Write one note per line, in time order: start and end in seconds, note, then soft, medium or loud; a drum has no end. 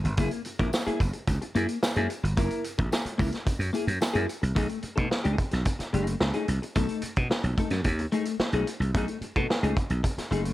0.04 0.14 G1 medium
0.04 muted clean electric guitar stroke soft
0.04 closed hi-hat medium
0.17 0.28 F#1 loud
0.17 0.40 A#3 medium
0.17 0.32 E4 medium
0.17 0.31 G#4 medium
0.17 kick loud
0.17 closed hi-hat loud
0.17 tambourine soft
0.31 muted clean electric guitar stroke soft
0.31 closed hi-hat medium
0.45 muted clean electric guitar stroke soft
0.45 closed hi-hat medium
0.45 tambourine medium
0.59 0.69 A#1 medium
0.59 0.71 A#3 medium
0.59 0.72 E4 medium
0.59 0.73 A#4 medium
0.59 kick loud
0.59 closed hi-hat soft
0.73 muted clean electric guitar stroke soft
0.73 snare loud
0.73 tambourine loud
0.87 1.00 A#3 medium
0.87 1.00 E4 medium
0.87 1.01 G#4 medium
0.87 muted slap bass stroke medium
0.87 closed hi-hat medium
1.00 1.10 F#1 loud
1.00 kick medium
1.00 closed hi-hat medium
1.00 tambourine medium
1.13 muted clean electric guitar stroke soft
1.13 closed hi-hat medium
1.27 1.38 C#2 medium
1.27 muted clean electric guitar stroke soft
1.27 kick medium
1.27 closed hi-hat medium
1.27 tambourine medium
1.42 muted clean electric guitar stroke medium
1.42 closed hi-hat medium
1.55 1.65 F#2 medium
1.55 1.76 A#3 medium
1.55 1.69 E4 loud
1.55 1.68 G#4 loud
1.55 closed hi-hat medium
1.55 tambourine medium
1.69 muted clean electric guitar stroke soft
1.69 closed hi-hat medium
1.69 tambourine soft
1.83 muted clean electric guitar stroke soft
1.83 snare loud
1.83 tambourine loud
1.96 2.06 F#2 medium
1.96 2.10 A#3 medium
1.96 2.10 E4 medium
1.96 2.11 G#4 medium
1.96 closed hi-hat medium
1.96 tambourine soft
2.10 muted clean electric guitar stroke soft
2.10 closed hi-hat medium
2.10 tambourine medium
2.23 2.33 G1 medium
2.23 muted clean electric guitar stroke soft
2.23 closed hi-hat medium
2.37 2.48 F#1 loud
2.37 2.62 A#3 medium
2.37 2.63 E4 medium
2.37 2.63 A#4 medium
2.37 kick loud
2.37 closed hi-hat loud
2.37 tambourine medium
2.51 closed hi-hat medium
2.64 closed hi-hat medium
2.64 tambourine medium
2.78 2.89 A#1 medium
2.78 muted clean electric guitar stroke soft
2.78 kick medium
2.78 closed hi-hat soft
2.92 muted clean electric guitar stroke soft
2.92 snare loud
2.92 tambourine medium
3.05 muted slap bass stroke soft
3.05 closed hi-hat medium
3.18 3.29 C#2 medium
3.18 3.36 A#3 medium
3.18 3.31 E4 medium
3.18 3.31 A#4 medium
3.18 kick medium
3.18 open hi-hat medium
3.18 tambourine medium
3.31 muted clean electric guitar stroke soft
3.31 snare soft
3.31 closed hi-hat medium
3.46 muted clean electric guitar stroke soft
3.46 kick medium
3.46 closed hi-hat loud
3.46 tambourine medium
3.59 3.70 F#2 medium
3.59 closed hi-hat medium
3.59 tambourine soft
3.73 3.90 A#3 medium
3.73 3.88 E4 medium
3.73 3.86 G#4 medium
3.73 closed hi-hat medium
3.73 tambourine medium
3.87 3.98 F#2 loud
3.87 muted clean electric guitar stroke soft
3.87 closed hi-hat medium
3.87 tambourine soft
4.01 muted clean electric guitar stroke soft
4.01 snare loud
4.01 tambourine loud
4.13 4.25 F#2 medium
4.13 4.27 A#3 medium
4.13 4.28 E4 medium
4.13 4.28 G#4 medium
4.13 closed hi-hat medium
4.28 muted clean electric guitar stroke soft
4.28 closed hi-hat medium
4.28 tambourine soft
4.42 4.53 C2 medium
4.42 muted clean electric guitar stroke soft
4.42 closed hi-hat medium
4.55 4.66 B1 loud
4.55 4.77 A3 medium
4.55 4.70 D#4 medium
4.55 4.68 G#4 medium
4.55 kick loud
4.55 closed hi-hat loud
4.69 muted clean electric guitar stroke soft
4.69 closed hi-hat medium
4.83 muted clean electric guitar stroke soft
4.83 muted slap bass stroke soft
4.83 closed hi-hat medium
4.96 5.08 B2 medium
4.96 5.09 A3 medium
4.96 5.09 D#4 medium
4.96 5.11 A4 medium
4.96 kick loud
4.96 closed hi-hat soft
5.10 muted clean electric guitar stroke soft
5.10 snare loud
5.24 5.35 C#2 medium
5.24 5.37 A3 medium
5.24 5.37 D#4 medium
5.24 5.38 G#4 medium
5.24 closed hi-hat medium
5.38 kick medium
5.38 closed hi-hat medium
5.51 5.63 B1 medium
5.51 muted clean electric guitar stroke soft
5.51 snare soft
5.51 closed hi-hat soft
5.65 muted clean electric guitar stroke soft
5.65 kick medium
5.65 closed hi-hat medium
5.79 muted clean electric guitar stroke soft
5.79 muted slap bass stroke soft
5.79 snare soft
5.79 closed hi-hat medium
5.93 6.14 F#1 medium
5.93 6.15 A3 medium
5.93 6.07 D#4 medium
5.93 6.06 G#4 medium
5.93 closed hi-hat medium
6.07 muted clean electric guitar stroke soft
6.07 closed hi-hat medium
6.20 6.31 C#2 medium
6.20 muted clean electric guitar stroke soft
6.20 snare loud
6.34 6.47 A3 medium
6.34 6.48 D#4 medium
6.34 6.48 G#4 medium
6.34 closed hi-hat medium
6.48 6.58 C2 medium
6.48 muted clean electric guitar stroke soft
6.48 closed hi-hat medium
6.62 muted clean electric guitar stroke medium
6.62 closed hi-hat soft
6.75 6.86 B1 loud
6.75 7.01 A3 medium
6.75 7.01 D#4 medium
6.75 7.01 A4 medium
6.75 kick loud
6.75 closed hi-hat loud
6.89 closed hi-hat medium
7.02 muted slap bass stroke soft
7.02 closed hi-hat medium
7.16 7.27 B2 medium
7.16 muted clean electric guitar stroke soft
7.16 kick loud
7.16 closed hi-hat soft
7.29 muted clean electric guitar stroke soft
7.29 snare loud
7.44 7.54 B1 medium
7.44 closed hi-hat medium
7.58 7.75 A3 medium
7.58 7.72 D#4 medium
7.58 7.71 A4 medium
7.58 kick medium
7.58 closed hi-hat medium
7.70 7.81 F#2 loud
7.70 muted clean electric guitar stroke soft
7.70 snare soft
7.70 closed hi-hat medium
7.84 8.05 D#2 loud
7.84 muted clean electric guitar stroke soft
7.84 kick medium
7.84 closed hi-hat medium
7.99 muted clean electric guitar stroke soft
7.99 closed hi-hat medium
8.12 8.34 A3 medium
8.12 8.27 D#4 medium
8.12 8.26 G#4 medium
8.12 closed hi-hat medium
8.25 muted clean electric guitar stroke soft
8.25 closed hi-hat medium
8.39 muted slap bass stroke soft
8.39 muted clean electric guitar stroke soft
8.39 snare loud
8.52 8.63 B1 medium
8.52 8.68 D#4 medium
8.52 8.68 G#4 medium
8.52 closed hi-hat medium
8.57 8.67 A3 medium
8.67 muted clean electric guitar stroke soft
8.67 closed hi-hat medium
8.80 8.90 C2 medium
8.80 muted clean electric guitar stroke soft
8.80 closed hi-hat medium
8.94 9.05 B1 medium
8.94 9.17 A3 medium
8.94 9.09 D#4 medium
8.94 9.08 G#4 medium
8.94 kick loud
8.94 closed hi-hat loud
9.08 muted clean electric guitar stroke soft
9.08 closed hi-hat medium
9.21 muted slap bass stroke soft
9.21 muted clean electric guitar stroke soft
9.21 closed hi-hat medium
9.36 9.46 B2 medium
9.36 9.48 A3 medium
9.36 9.49 D#4 medium
9.36 9.50 A4 medium
9.36 kick loud
9.36 closed hi-hat soft
9.49 muted clean electric guitar stroke soft
9.49 snare loud
9.63 9.73 C#2 medium
9.63 9.76 A3 medium
9.63 9.76 D#4 medium
9.63 9.77 G#4 medium
9.63 closed hi-hat medium
9.77 kick loud
9.77 closed hi-hat medium
9.90 10.00 B1 medium
9.90 muted clean electric guitar stroke soft
9.90 closed hi-hat medium
10.03 muted clean electric guitar stroke medium
10.03 kick medium
10.03 closed hi-hat medium
10.18 muted slap bass stroke soft
10.18 muted clean electric guitar stroke medium
10.18 snare soft
10.18 closed hi-hat medium
10.31 10.51 F#1 medium
10.31 10.53 A3 medium
10.31 10.45 D#4 medium
10.31 10.44 G#4 medium
10.31 closed hi-hat medium
10.45 muted clean electric guitar stroke soft
10.45 closed hi-hat medium